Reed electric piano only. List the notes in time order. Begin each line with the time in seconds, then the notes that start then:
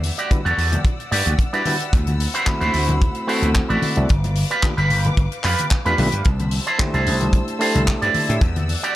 0.30 G3 D4 E4 F#4 B4
1.53 G3 D4 E4 F#4 B4
1.66 G3 D4 E4 F#4 B4
2.46 A3 C4 E4 F#4 B5
3.27 A3 C4 E4 F#4 A4
3.96 A3 C4 E4 F#4 D5
4.62 A3 D4 F4 G4 B4
5.85 A3 D4 F4 G4 B4
5.98 A3 D4 F4 G4 B4
6.79 A3 D4 E4 G4 C5
7.59 A3 D4 E4 G4 A4
8.29 A3 D4 E4 G4 E5